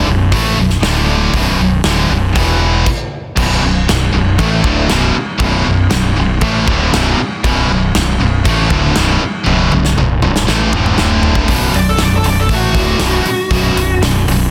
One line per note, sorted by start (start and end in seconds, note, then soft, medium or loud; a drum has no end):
0.07 0.31 B0 medium
0.07 0.28 B1 medium
0.07 0.28 F#2 medium
0.32 0.56 A1 medium
0.32 0.57 A2 medium
0.32 0.57 E3 medium
0.32 0.57 A3 loud
0.32 kick medium
0.32 open hi-hat medium
0.57 0.81 B0 medium
0.57 0.78 B1 medium
0.57 0.78 F#2 medium
0.70 snare soft
0.82 1.30 D1 medium
0.82 1.33 D2 medium
0.82 1.33 A2 loud
0.82 1.34 D3 loud
0.82 snare loud
0.82 open hi-hat medium
1.33 1.57 B0 medium
1.33 1.59 B1 medium
1.33 1.59 F#2 loud
1.33 1.60 B2 loud
1.33 kick medium
1.33 open hi-hat soft
1.59 1.83 B0 medium
1.59 1.80 B1 medium
1.59 1.80 F#2 medium
1.84 2.08 D1 medium
1.84 2.10 D2 medium
1.84 2.10 A2 loud
1.84 2.11 D3 medium
1.84 snare loud
1.84 open hi-hat soft
2.10 2.34 B0 medium
2.10 2.31 B1 medium
2.10 2.31 F#2 medium
2.36 2.83 E1 medium
2.36 2.86 E2 medium
2.36 2.87 B2 medium
2.36 2.87 E3 loud
2.36 kick loud
2.36 open hi-hat medium
2.86 kick loud
2.86 crash medium
3.37 3.61 B0 medium
3.37 3.62 B1 loud
3.37 3.62 F#2 loud
3.37 3.63 B2 loud
3.37 kick loud
3.37 crash loud
3.37 crash medium
3.63 3.87 B0 medium
3.63 3.84 B1 medium
3.63 3.84 F#2 medium
3.89 4.13 B0 medium
3.89 4.09 B1 medium
3.89 4.10 F#2 medium
3.89 snare loud
3.89 crash medium
4.14 4.38 B0 medium
4.14 4.35 B1 medium
4.14 4.35 F#2 medium
4.38 4.63 A1 medium
4.38 4.64 A2 loud
4.38 4.64 E3 loud
4.38 4.64 A3 loud
4.38 kick loud
4.38 crash medium
4.64 4.88 D1 medium
4.64 4.89 D2 medium
4.64 4.90 A2 medium
4.64 4.90 D3 medium
4.64 kick loud
4.89 5.15 B0 medium
4.89 5.14 B1 loud
4.89 5.15 F#2 loud
4.89 5.15 B2 loud
4.89 snare loud
4.89 crash medium
5.15 muted overdriven electric guitar stroke medium
5.15 muted distorted electric guitar stroke medium
5.15 muted fingered electric bass stroke soft
5.39 5.64 B0 medium
5.39 5.63 B1 loud
5.39 5.64 F#2 loud
5.39 5.66 B2 loud
5.39 kick loud
5.39 crash medium
5.64 5.91 B0 medium
5.64 5.86 B1 medium
5.64 5.86 F#2 medium
5.90 6.16 B0 medium
5.90 6.11 B1 medium
5.90 6.11 F#2 medium
5.90 snare loud
5.90 crash medium
6.16 6.41 B0 medium
6.16 6.37 B1 medium
6.16 6.37 F#2 medium
6.41 6.66 A1 medium
6.41 6.66 A2 medium
6.41 6.67 E3 loud
6.41 6.68 A3 loud
6.41 kick loud
6.41 crash medium
6.67 6.91 D1 medium
6.67 6.92 D2 medium
6.67 6.92 A2 loud
6.67 6.93 D3 loud
6.67 kick loud
6.92 7.17 B0 medium
6.92 7.17 B1 loud
6.92 7.18 F#2 medium
6.92 7.18 B2 loud
6.92 snare loud
6.92 crash medium
7.18 muted overdriven electric guitar stroke medium
7.18 muted distorted electric guitar stroke medium
7.18 muted fingered electric bass stroke soft
7.44 7.68 B0 medium
7.44 7.69 B1 loud
7.44 7.69 F#2 loud
7.44 7.70 B2 loud
7.44 kick loud
7.44 crash medium
7.70 7.93 B0 medium
7.70 7.90 B1 medium
7.70 7.90 F#2 medium
7.95 8.18 B0 medium
7.95 8.15 B1 medium
7.95 8.16 F#2 medium
7.95 snare loud
7.95 crash medium
8.20 8.45 B0 medium
8.20 8.41 B1 medium
8.20 8.40 F#2 medium
8.44 8.69 A1 medium
8.44 8.70 A2 medium
8.44 8.70 E3 loud
8.44 8.70 A3 loud
8.44 kick loud
8.44 crash medium
8.70 8.94 D1 loud
8.70 8.95 D2 medium
8.70 8.96 A2 loud
8.70 8.96 D3 loud
8.70 kick loud
8.96 9.20 B0 medium
8.96 9.20 B1 medium
8.96 9.21 F#2 loud
8.96 9.22 B2 loud
8.96 snare loud
8.96 crash medium
9.21 muted distorted electric guitar stroke medium
9.21 muted fingered electric bass stroke soft
9.21 muted overdriven electric guitar stroke medium
9.46 9.70 B0 medium
9.46 9.71 B1 loud
9.46 9.71 F#2 loud
9.46 9.72 B2 loud
9.46 high tom medium
9.72 9.96 B0 medium
9.72 9.93 B1 medium
9.72 9.93 F#2 medium
9.72 high tom medium
9.85 snare medium
9.98 10.22 B0 medium
9.98 10.19 B1 medium
9.98 10.19 F#2 medium
9.98 mid tom medium
10.22 10.47 B0 medium
10.22 10.44 B1 medium
10.22 10.44 F#2 medium
10.22 mid tom medium
10.36 snare medium
10.48 10.71 A1 medium
10.48 10.73 A2 loud
10.48 10.74 E3 loud
10.48 10.74 A3 loud
10.48 snare medium
10.72 10.96 D1 medium
10.72 10.99 D2 medium
10.72 10.99 A2 loud
10.72 mid tom loud
10.76 11.00 D3 loud
10.86 mid tom medium
10.98 11.46 D1 medium
10.98 11.49 D2 medium
10.98 11.50 A2 medium
10.98 11.50 D3 loud
10.98 snare medium
11.23 floor tom medium
11.35 kick loud
11.48 11.73 B0 medium
11.48 11.74 B1 medium
11.48 11.75 F#2 medium
11.48 11.75 B2 loud
11.48 kick loud
11.48 open hi-hat medium
11.74 11.98 B0 medium
11.74 11.96 B1 medium
11.74 11.96 F#2 medium
11.74 11.88 D5 medium
11.74 open hi-hat medium
11.89 12.01 A4 medium
11.97 12.24 B0 medium
11.97 12.19 B1 medium
11.97 12.21 F#2 medium
11.97 snare loud
11.97 open hi-hat medium
12.01 12.21 B1 medium
12.01 12.14 D5 medium
12.16 12.27 A4 medium
12.24 12.48 B0 medium
12.24 12.46 B1 medium
12.24 12.46 F#2 medium
12.24 12.39 D5 medium
12.24 open hi-hat medium
12.40 12.54 A4 medium
12.49 12.74 A1 medium
12.49 12.76 A2 medium
12.49 12.76 E3 medium
12.49 12.76 A3 loud
12.49 kick loud
12.49 open hi-hat medium
12.54 14.01 F#4 medium
12.75 12.99 D1 medium
12.75 13.01 D2 medium
12.75 13.02 A2 medium
12.75 13.02 D3 medium
12.75 kick loud
12.75 open hi-hat medium
12.99 13.24 B0 medium
12.99 13.26 B1 loud
12.99 13.27 F#2 loud
12.99 13.27 B2 loud
12.99 snare loud
12.99 open hi-hat medium
13.25 muted fingered electric bass stroke soft
13.25 muted distorted electric guitar stroke medium
13.25 open hi-hat medium
13.50 13.74 B0 medium
13.50 13.76 B1 medium
13.50 13.77 F#2 loud
13.50 13.78 B2 loud
13.50 kick loud
13.50 open hi-hat medium
13.75 14.00 B0 medium
13.75 13.98 B1 medium
13.75 13.99 F#2 medium
13.75 open hi-hat medium
14.00 14.25 B0 medium
14.00 14.23 B1 medium
14.00 14.23 F#2 medium
14.00 snare loud
14.00 open hi-hat medium
14.27 14.51 B0 medium
14.27 14.49 B1 medium
14.27 14.49 F#2 medium
14.27 open hi-hat medium